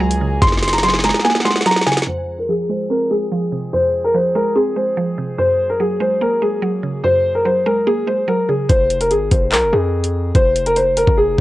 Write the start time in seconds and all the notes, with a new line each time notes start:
Already playing: C#2 F#3 G#3 A#3 C#4 G#4 G#5
0.00 F#3
0.11 closed hi-hat
0.21 C#3
0.42 F#1 F#2 C6, kick, snare, closed hi-hat
0.47 snare
0.52 snare
0.57 snare
0.63 snare, closed hi-hat
0.68 snare, closed hi-hat
0.73 A#5, snare, closed hi-hat
0.78 snare, closed hi-hat
0.83 F#3 G#5 C6, snare, closed hi-hat
0.88 snare
0.94 snare
0.99 snare
1.04 G#3 A#5, snare, closed hi-hat
1.09 snare
1.14 snare
1.19 snare
1.25 A#3 F#5 G#5, snare
1.30 snare
1.35 snare
1.40 snare
1.45 G#3 C6, snare
1.51 snare
1.56 snare
1.61 snare
1.66 F#3 A#5, snare, closed hi-hat
1.71 snare
1.76 snare
1.81 snare
1.86 C#3 G#5, snare, closed hi-hat
1.92 snare
1.97 snare, closed hi-hat
2.02 snare
2.07 F2 F3 G#3 C4 G#4 C5
2.39 A#4
2.49 F3 G#4
2.69 G#3 C5
2.90 C4 A#4
3.10 G#3 G#4
3.32 F3
3.52 C3
3.73 F2 C5
4.04 A#4
4.14 F3 C5
4.35 G#3 A#4
4.55 C4 G#4
4.76 G#3 C5
4.97 F3
5.18 C3
5.38 F#2 F#3 A#3 C#4 C5
5.70 A#4
5.80 F#3 G#4
6.00 G#3 C5
6.21 A#3 A#4
6.42 G#3 G#4
6.62 F#3
6.83 C#3
7.04 F#2 C5
7.35 A#4
7.45 F#3 C5
7.66 G#3 A#4
7.87 A#3 G#4
8.07 G#3 C5
8.28 F#3 A#4
8.48 C#3 G#4
8.69 F1 C5, kick, closed hi-hat
8.90 closed hi-hat
9.01 A#4, closed hi-hat
9.11 G#1 G#4, closed hi-hat
9.31 F1 C5, kick, closed hi-hat
9.52 C2 A#4, clap
9.62 F1
9.72 F2 G#4
10.04 closed hi-hat
10.35 F1 C5, kick, closed hi-hat
10.56 closed hi-hat
10.66 A#4, closed hi-hat
10.76 C5, closed hi-hat
10.97 A#4, closed hi-hat
11.07 F1, kick
11.18 G#4